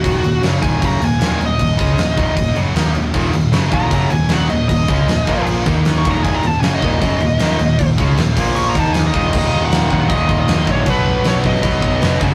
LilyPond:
<<
  \new Staff \with { instrumentName = "Lead electric guitar" } { \time 4/4 \key ees \minor \tempo 4 = 155 ges'4 r8 aes''8 bes''8 aes''4 ees''8~ | ees''2~ ees''8 r4. | r4. bes''4 aes''8 ges''8 ees''8 | ees''2 r4 \tuplet 3/2 { r8 des'''8 bes''8 } |
\tuplet 3/2 { aes''8 bes''8 a''8 aes''8 ees''4~ } ees''2~ | ees''8 r4. \tuplet 3/2 { des'''8 bes''8 a''8 aes''8 ees''4 } | ees''8. ges''8. ges''8 ees''8. ees''8. des''8 | b'4 des''8 dis''2 r8 | }
  \new Staff \with { instrumentName = "Overdriven electric guitar" } { \clef bass \time 4/4 \key ees \minor r1 | r1 | <ees, bes, ees>8 <ees, bes,>8 <ges, des ges>8 <ees, bes, ees>8 <ges, des ges>8 <ees, bes,>8 <ees, bes, ees>8 <ees, bes,>8 | <ees, bes,>8 <des aes des'>8 <ees, bes,>8 <bes, f bes>4 <ees bes ees'>4 <ees, bes, ees>8 |
<ees, bes, ees>8 <ees, bes,>8 <ges, des ges>8 <ees, bes, ees>8 <ges, des ges>8 <ees, bes,>8 <ees, bes, ees>8 <ees, bes,>8 | <ees, bes,>8 <des aes des'>8 <ees, bes,>8 <bes, f bes>4 <ees bes ees'>4 <ees, bes, ees>8 | <ees, bes, ees>4 <ees, bes, ees>8 <ees, bes, ees>8 <ees, bes, ees>4 <ees, bes, ees>8 <ees, bes, ees>8 | <b, fis b>4 <b, fis b>8 <b, fis b>8 <b, fis b>4 <b, fis b>8 <ges, des ges>8 | }
  \new Staff \with { instrumentName = "Distorted electric guitar" } { \clef bass \time 4/4 \key ees \minor <ees, bes, ees>8 <ees, bes,>8 <ges, des ges>8 <ees, bes, ees>8 <ges, des ges>8 <ees, bes,>8 <ees, bes, ees>8 <ees, bes,>8 | <ees, bes,>8 <des aes des'>8 <ees, bes,>8 <ees, bes, ees>8 <ees, bes,>8 <ges, des ges>8 <ees bes ees'>8 <ees, bes,>8 | <ees, bes, ees>8 <ees, bes,>8 <ges, des ges>8 <ees, bes, ees>8 <ges, des ges>8 <ees, bes,>8 <ees, bes, ees>8 <ees, bes,>8 | <ees, bes,>8 <des aes des'>8 <ees, bes,>8 <bes, f bes>4 <ees bes ees'>4 <ees, bes, ees>8 |
<ees, bes, ees>8 <ees, bes,>8 <ges, des ges>8 <ees, bes, ees>8 <ges, des ges>8 <ees, bes,>8 <ees, bes, ees>8 <ees, bes,>8 | <ees, bes,>8 <des aes des'>8 <ees, bes,>8 <bes, f bes>4 <ees bes ees'>4 <ees, bes, ees>8 | <ees, bes, ees>2 <ees, bes, ees>2 | <b, fis b>2 <b, fis b>4. <ges, des ges>8 | }
  \new Staff \with { instrumentName = "Distorted electric guitar" } { \clef bass \time 4/4 \key ees \minor <ees, bes, ees>8 <ees, bes,>8 <ges, des ges>8 <ees, bes, ees>8 <ges, des ges>8 <ees, bes,>8 <ees, bes, ees>8 <ees, bes,>8 | <ees, bes,>8 <des aes des'>8 <ees, bes,>8 <ees, bes, ees>8 <ees, bes,>8 <ges, des ges>8 <ees bes ees'>8 <ees, bes,>8 | <ees, bes, ees>8 <ees, bes,>8 <ges, des ges>8 <ees, bes, ees>8 <ges, des ges>8 <ees, bes,>8 <ees, bes, ees>8 <ees, bes,>8 | <ees, bes,>8 <des aes des'>8 <ees, bes,>8 <bes, f bes>4 <ees bes ees'>4 <ees, bes, ees>8 |
<ees, bes, ees>8 <ees, bes,>8 <ges, des ges>8 <ees, bes, ees>8 <ges, des ges>8 <ees, bes,>8 <ees, bes, ees>8 <ees, bes,>8 | <ees, bes,>8 <des aes des'>8 <ees, bes,>8 <bes, f bes>4 <ees bes ees'>4 <ees, bes, ees>8 | <ees, bes, ees>2 <ees, bes, ees>2 | <b, fis b>2 <b, fis b>4. <ges, des ges>8 | }
  \new Staff \with { instrumentName = "Picked electric bass" } { \clef bass \time 4/4 \key ees \minor ees,,8 ees,,8 ges,,8 ees,,8 ges,,8 ees,,8 ees,,8 ees,,8 | ees,,8 des,8 ees,,8 ees,,8 ees,,8 ges,,8 ees,8 ees,,8 | ees,,8 ees,,8 ges,,8 ees,,8 ges,,8 ees,,8 ees,,8 ees,,8 | ees,,8 des,8 ees,,8 bes,,4 ees,4 ees,,8 |
ees,,8 ees,,8 ges,,8 ees,,8 ges,,8 ees,,8 ees,,8 ees,,8 | ees,,8 des,8 ees,,8 bes,,4 ees,4 ees,,8 | ees,,8 ees,,8 ees,,8 ees,,8 ees,,4 ees,8 bes,,8 | b,,8 b,,8 b,,8 b,,8 b,,4 f,,8 ges,,8 | }
  \new DrumStaff \with { instrumentName = "Drums" } \drummode { \time 4/4 <cymc bd>8 cymc8 <cymc sn>8 <cymc bd>8 <cymc bd>8 cymc8 <cymc sn>8 cymc8 | <cymc bd>8 <cymc bd>8 <cymc sn>8 <cymc bd>8 <cymc bd>8 cymc8 <cymc sn>8 cymc8 | <cymc bd>8 cymc8 <cymc sn>8 <cymc bd>8 <cymc bd>8 cymc8 <cymc sn>8 cymc8 | <cymc bd>8 <cymc bd>8 <cymc sn>8 <cymc bd>8 cymc8 <cymc bd>8 <cymc sn>8 <cymc bd>8 |
<cymc bd>8 cymc8 <cymc sn>8 <cymc bd>8 <cymc bd>8 cymc8 <cymc sn>8 cymc8 | <cymc bd>8 <cymc bd>8 <cymc sn>8 <cymc bd>8 cymc8 <cymc bd>8 <cymc sn>8 <cymc bd>8 | <cymc bd>4 <cymc sn>8 bd8 <cymc bd>8 bd8 <cymc sn>16 sn16 bd8 | <cymc bd>4 <cymc sn>8 bd16 sn16 <cymc bd>8 bd8 <cymc sn>16 sn16 bd8 | }
>>